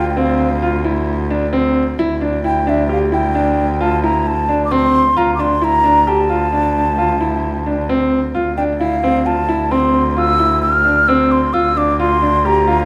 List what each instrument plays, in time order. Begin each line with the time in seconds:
Already playing: cello D2
0.09 flute G5
0.17 grand piano C4, flute F5
0.63 grand piano F4
0.85 grand piano E4
1.30 grand piano D4
1.53 grand piano C4
1.99 cello D2, grand piano E4
2.21 grand piano D4
2.44 grand piano E4, flute G5
2.67 grand piano D4, flute E5
2.89 grand piano G4, flute F5
3.12 grand piano E4, flute G5
3.35 grand piano D4
3.81 grand piano F4, flute A5
4.03 grand piano E4, flute A#5
4.27 flute A5
4.49 grand piano D4
4.65 flute D6
4.71 grand piano C4, flute C6
5.17 cello D2, grand piano F4, flute A#5
5.35 flute D6
5.39 grand piano D4, flute C6
5.62 grand piano E4, flute A#5
5.84 grand piano D4
6.07 grand piano G4, flute A5
6.30 grand piano F4
6.53 grand piano D4
6.98 grand piano F4
7.21 grand piano E4
7.66 grand piano D4
7.89 grand piano C4
8.35 cello D2, grand piano F4
8.57 grand piano D4, flute G5
8.79 grand piano E4, flute F5
9.04 grand piano C4
9.26 grand piano F4, flute A5
9.49 grand piano E4
9.71 grand piano C4, flute C6
10.17 grand piano F4, flute E6
10.40 grand piano E4
10.62 flute F6
10.85 grand piano D4
11.08 grand piano C4, flute E6
11.32 flute C6
11.53 cello D2, grand piano F4, flute E6
11.77 grand piano D4, flute D6
12.00 grand piano F4, flute C6
12.22 grand piano D4
12.45 grand piano G4, flute A#5
12.67 grand piano F4